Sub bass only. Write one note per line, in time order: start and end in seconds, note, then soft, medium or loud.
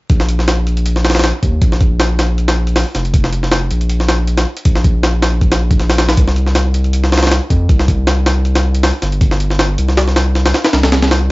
0.10 1.32 A#1 medium
1.43 1.60 D#2 medium
1.62 2.84 A#1 medium
2.95 3.69 F1 loud
3.71 4.45 A#1 medium
4.66 5.79 A#1 loud
5.80 6.16 A#1 loud
6.18 7.40 C2 loud
7.50 7.68 F2 medium
7.69 8.92 C2 loud
9.02 9.77 G1 loud
9.78 10.53 C2 medium
10.73 11.32 C2 loud